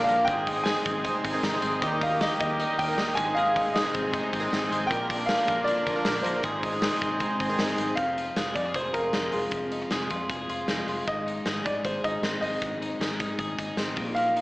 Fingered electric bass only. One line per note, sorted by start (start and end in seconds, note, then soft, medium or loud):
0.09 0.25 A#1 loud
0.28 0.74 G#1 loud
0.86 1.10 G#1 medium
1.25 1.41 G#1 loud
1.43 1.59 G#1 loud
1.63 1.79 G#1 medium
1.82 2.28 D#2 loud
2.40 2.64 D#2 medium
2.79 2.95 D#2 medium
2.97 3.13 D#2 loud
3.17 3.72 G#1 loud
3.95 4.18 G#1 medium
4.33 4.49 G#1 loud
4.52 4.68 G#1 loud
4.71 4.87 G#1 loud
4.91 5.36 A#1 loud
5.48 5.72 A#1 medium
5.86 6.02 A#1 medium
6.07 6.22 A#1 loud
6.25 6.41 A#1 loud
6.44 6.90 G#1 loud
7.02 7.25 G#1 loud
7.40 7.56 G#1 loud
7.59 7.75 G#1 loud
7.78 7.94 G#1 loud
7.97 8.29 F1 medium
8.37 8.52 F1 medium
8.55 8.71 F2 medium
8.74 8.90 F1 medium
8.94 9.10 F1 medium
9.14 9.30 F1 medium
9.33 9.49 F1 medium
9.52 9.84 F1 medium
9.91 10.07 F1 medium
10.10 10.26 F2 medium
10.29 10.45 F1 medium
10.50 10.65 F1 medium
10.68 10.84 F1 medium
10.86 11.03 F1 loud
11.08 11.39 G#1 medium
11.46 11.62 G#1 medium
11.66 11.81 G#2 medium
11.85 12.00 G#1 medium
12.04 12.20 G#1 medium
12.22 12.38 G#1 medium
12.41 12.58 G#1 medium
12.62 12.93 G#1 medium
12.99 13.16 G#1 medium
13.20 13.36 G#2 medium
13.39 13.55 G#1 medium
13.58 13.74 G#1 medium
13.76 13.93 G#1 medium
13.97 14.41 A#1 medium